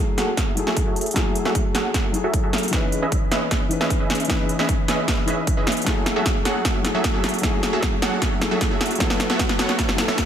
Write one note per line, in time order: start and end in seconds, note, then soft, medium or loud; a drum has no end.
0.00 0.54 F#3 medium
0.00 0.54 A3 medium
0.00 0.55 E4 medium
0.00 0.56 G#4 loud
0.18 0.35 F#3 medium
0.18 0.35 F#4 medium
0.18 0.35 G#4 medium
0.18 0.35 A4 medium
0.18 0.35 F#5 medium
0.18 snare soft
0.18 closed hi-hat medium
0.37 0.50 F#3 medium
0.37 0.50 F#4 medium
0.37 0.50 G#4 medium
0.37 0.50 A4 medium
0.37 0.50 E5 medium
0.37 kick loud
0.37 snare soft
0.37 closed hi-hat medium
0.55 1.12 F#3 medium
0.55 1.13 A3 medium
0.55 1.14 E4 medium
0.55 closed hi-hat medium
0.59 1.15 G#4 medium
0.67 0.84 F#3 medium
0.67 0.84 F#4 medium
0.67 0.84 G#4 medium
0.67 0.84 A4 medium
0.67 0.84 E5 medium
0.67 snare soft
0.77 kick medium
0.77 closed hi-hat medium
0.87 1.14 F#3 medium
0.87 1.14 F#4 medium
0.87 1.14 G#4 medium
0.87 1.14 A4 medium
0.87 1.14 E5 medium
0.96 closed hi-hat soft
1.01 closed hi-hat medium
1.06 closed hi-hat soft
1.11 2.10 F#3 medium
1.11 closed hi-hat medium
1.15 1.43 F#3 medium
1.15 2.11 A3 medium
1.15 2.12 E4 medium
1.15 1.43 F#4 medium
1.15 1.43 G#4 medium
1.15 2.13 G#4 loud
1.15 1.43 A4 medium
1.15 1.43 E5 medium
1.15 kick loud
1.15 snare medium
1.15 closed hi-hat medium
1.35 closed hi-hat medium
1.45 1.58 F#3 medium
1.45 1.58 F#4 medium
1.45 1.58 G#4 medium
1.45 1.58 A4 medium
1.45 1.58 E5 loud
1.45 snare soft
1.55 kick loud
1.55 closed hi-hat medium
1.75 1.92 F#3 medium
1.75 1.92 F#4 medium
1.75 1.92 G#4 medium
1.75 1.92 A4 medium
1.75 1.92 F#5 medium
1.75 snare medium
1.75 closed hi-hat medium
1.94 2.07 F#3 medium
1.94 2.07 F#4 medium
1.94 2.07 G#4 medium
1.94 2.07 A4 medium
1.94 2.07 E5 medium
1.94 kick loud
1.94 snare medium
1.94 closed hi-hat medium
2.12 2.69 F#3 medium
2.12 2.70 A3 medium
2.12 2.71 E4 medium
2.12 closed hi-hat medium
2.16 2.71 G#4 medium
2.24 2.41 F#3 medium
2.24 2.41 F#4 medium
2.24 2.41 G#4 medium
2.24 2.41 A4 medium
2.24 2.41 E5 medium
2.34 kick medium
2.34 closed hi-hat medium
2.44 2.70 F#3 medium
2.44 2.71 F#4 medium
2.44 2.70 G#4 medium
2.44 2.70 A4 medium
2.44 2.70 E5 medium
2.53 snare medium
2.53 closed hi-hat soft
2.58 closed hi-hat medium
2.63 closed hi-hat soft
2.68 3.67 E3 medium
2.68 closed hi-hat medium
2.72 3.68 C#4 medium
2.72 3.00 C#4 medium
2.72 3.69 D#4 medium
2.72 3.00 G#4 medium
2.72 3.00 B4 medium
2.72 3.70 B4 loud
2.72 3.00 D#5 medium
2.72 3.00 E5 medium
2.72 kick loud
2.72 snare medium
2.72 closed hi-hat medium
2.92 closed hi-hat medium
3.02 3.15 C#4 medium
3.02 3.15 G#4 medium
3.02 3.15 B4 medium
3.02 3.15 D#5 medium
3.02 3.15 E5 loud
3.12 kick loud
3.12 closed hi-hat medium
3.32 3.49 C#4 medium
3.32 3.49 G#4 medium
3.32 3.49 B4 medium
3.32 3.49 D#5 medium
3.32 3.49 E5 loud
3.32 snare medium
3.32 closed hi-hat medium
3.51 3.64 C#4 medium
3.51 3.64 G#4 medium
3.51 3.64 B4 medium
3.51 3.64 D#5 medium
3.51 3.64 E5 medium
3.51 kick loud
3.51 snare medium
3.51 closed hi-hat medium
3.69 4.26 E3 medium
3.69 4.27 C#4 medium
3.69 4.28 D#4 medium
3.69 4.28 B4 medium
3.69 closed hi-hat medium
3.81 3.98 C#4 medium
3.81 3.98 G#4 medium
3.81 3.98 B4 medium
3.81 3.98 D#5 medium
3.81 3.98 E5 medium
3.81 snare medium
3.90 kick medium
3.90 closed hi-hat medium
4.00 4.27 C#4 medium
4.00 4.27 G#4 medium
4.00 4.27 B4 medium
4.00 4.27 D#5 medium
4.00 4.27 E5 medium
4.10 snare medium
4.10 closed hi-hat soft
4.15 closed hi-hat medium
4.20 closed hi-hat soft
4.25 5.24 E3 medium
4.25 closed hi-hat medium
4.29 5.25 C#4 medium
4.29 4.57 C#4 medium
4.29 5.26 D#4 medium
4.29 4.57 G#4 medium
4.29 4.57 B4 medium
4.29 5.26 B4 loud
4.29 4.57 D#5 medium
4.29 4.57 E5 loud
4.29 kick loud
4.29 snare medium
4.29 closed hi-hat medium
4.49 closed hi-hat medium
4.59 4.72 C#4 medium
4.59 4.72 G#4 medium
4.59 4.72 B4 medium
4.59 4.72 D#5 medium
4.59 4.72 E5 loud
4.59 snare medium
4.69 kick loud
4.69 closed hi-hat medium
4.88 5.06 C#4 medium
4.88 5.06 G#4 medium
4.88 5.06 B4 medium
4.88 5.06 D#5 medium
4.88 5.06 E5 medium
4.88 snare medium
4.88 closed hi-hat medium
5.08 5.21 C#4 medium
5.08 5.21 G#4 medium
5.08 5.21 B4 medium
5.08 5.21 D#5 medium
5.08 5.21 E5 medium
5.08 kick loud
5.08 snare medium
5.08 closed hi-hat medium
5.26 5.83 E3 medium
5.26 5.84 C#4 medium
5.26 5.40 C#4 medium
5.26 5.85 D#4 medium
5.26 5.40 G#4 medium
5.26 5.40 B4 medium
5.26 5.85 B4 medium
5.26 5.40 D#5 medium
5.26 5.40 E5 medium
5.26 closed hi-hat medium
5.47 kick loud
5.47 closed hi-hat medium
5.57 5.77 C#4 medium
5.57 5.77 G#4 medium
5.57 5.77 B4 medium
5.57 5.77 D#5 medium
5.57 5.77 E5 medium
5.67 snare medium
5.67 closed hi-hat soft
5.72 closed hi-hat medium
5.77 closed hi-hat soft
5.82 6.81 F#3 medium
5.82 closed hi-hat medium
5.86 6.14 F#3 medium
5.86 6.82 A3 medium
5.86 6.83 E4 medium
5.86 6.14 F#4 medium
5.86 6.14 G#4 medium
5.86 6.83 G#4 loud
5.86 6.14 A4 medium
5.86 6.14 E5 medium
5.86 kick loud
5.86 snare medium
5.86 closed hi-hat medium
5.86 riser medium
6.06 snare medium
6.06 closed hi-hat medium
6.16 6.29 F#3 loud
6.16 6.29 F#4 medium
6.16 6.29 G#4 medium
6.16 6.29 A4 medium
6.16 6.29 E5 loud
6.26 kick loud
6.26 snare medium
6.26 closed hi-hat medium
6.45 6.63 F#3 medium
6.45 6.63 F#4 medium
6.45 6.63 G#4 medium
6.45 6.63 A4 medium
6.45 6.63 F#5 medium
6.45 snare medium
6.45 closed hi-hat medium
6.65 6.78 F#3 medium
6.65 6.78 F#4 medium
6.65 6.78 G#4 medium
6.65 6.78 A4 medium
6.65 6.78 E5 medium
6.65 kick loud
6.65 snare medium
6.65 closed hi-hat medium
6.83 7.40 F#3 medium
6.83 7.41 A3 medium
6.83 7.41 E4 medium
6.83 snare medium
6.83 closed hi-hat medium
6.87 7.42 G#4 medium
6.95 7.12 F#3 medium
6.95 7.12 F#4 medium
6.95 7.12 G#4 medium
6.95 7.12 A4 medium
6.95 7.12 E5 medium
7.04 kick loud
7.04 snare medium
7.04 closed hi-hat medium
7.14 7.41 F#3 medium
7.14 7.41 F#4 medium
7.14 7.41 G#4 medium
7.14 7.41 A4 medium
7.14 7.41 E5 medium
7.24 snare medium
7.24 closed hi-hat soft
7.29 closed hi-hat medium
7.34 closed hi-hat soft
7.39 8.38 F#3 medium
7.39 closed hi-hat medium
7.43 7.71 F#3 medium
7.43 8.39 A3 medium
7.43 8.39 E4 medium
7.43 7.71 F#4 medium
7.43 7.71 G#4 medium
7.43 8.40 G#4 loud
7.43 7.71 A4 medium
7.43 7.71 E5 loud
7.43 kick loud
7.43 snare medium
7.43 closed hi-hat medium
7.63 snare medium
7.63 closed hi-hat medium
7.73 7.85 F#3 medium
7.73 7.85 F#4 medium
7.73 7.85 G#4 medium
7.73 7.85 A4 medium
7.73 7.85 E5 loud
7.83 kick loud
7.83 snare medium
7.83 closed hi-hat medium
8.02 8.19 F#3 medium
8.02 8.19 F#4 medium
8.02 8.19 G#4 medium
8.02 8.19 A4 medium
8.02 8.19 F#5 medium
8.02 snare medium
8.02 closed hi-hat medium
8.22 8.34 F#3 medium
8.22 8.34 F#4 medium
8.22 8.34 G#4 medium
8.22 8.34 A4 medium
8.22 8.34 E5 medium
8.22 kick loud
8.22 snare medium
8.22 closed hi-hat medium
8.39 8.97 F#3 medium
8.39 8.98 A3 medium
8.39 8.98 E4 medium
8.39 snare medium
8.39 closed hi-hat medium
8.43 8.99 G#4 medium
8.51 8.69 F#3 medium
8.51 8.69 F#4 medium
8.51 8.69 G#4 medium
8.51 8.69 A4 medium
8.51 8.69 E5 medium
8.61 kick loud
8.61 snare medium
8.61 closed hi-hat medium
8.71 8.98 F#3 medium
8.71 8.98 F#4 medium
8.71 8.98 G#4 medium
8.71 8.98 A4 medium
8.71 8.98 E5 medium
8.81 snare medium
8.81 closed hi-hat soft
8.86 closed hi-hat medium
8.91 closed hi-hat medium
8.95 9.95 F#3 medium
8.95 closed hi-hat medium
9.00 9.96 B3 medium
9.00 9.27 B3 medium
9.00 9.96 E4 medium
9.00 9.27 F#4 medium
9.00 9.27 A4 medium
9.00 9.97 A4 loud
9.00 9.27 C#5 medium
9.00 9.27 E5 loud
9.00 kick loud
9.00 snare medium
9.00 closed hi-hat medium
9.10 snare medium
9.20 snare medium
9.20 closed hi-hat medium
9.30 9.42 B3 medium
9.30 9.42 F#4 medium
9.30 9.42 A4 medium
9.30 9.42 C#5 medium
9.30 9.42 E5 loud
9.30 snare medium
9.39 kick loud
9.39 snare medium
9.39 closed hi-hat medium
9.49 snare medium
9.59 9.76 B3 medium
9.59 9.76 F#4 medium
9.59 9.76 A4 medium
9.59 9.76 C#5 medium
9.59 9.76 F#5 medium
9.59 snare medium
9.59 closed hi-hat medium
9.69 snare medium
9.79 9.91 B3 medium
9.79 9.91 E5 medium
9.79 kick loud
9.79 snare loud
9.79 closed hi-hat medium
9.89 snare medium
9.96 10.25 F#3 medium
9.96 10.25 B3 medium
9.96 10.25 E4 medium
9.96 snare loud
9.96 closed hi-hat medium
10.00 10.25 A4 medium
10.08 10.25 B3 medium
10.08 10.25 F#4 medium
10.08 10.25 A4 medium
10.08 10.25 C#5 medium
10.08 10.25 E5 medium
10.08 snare medium
10.18 kick loud
10.18 snare loud
10.18 closed hi-hat medium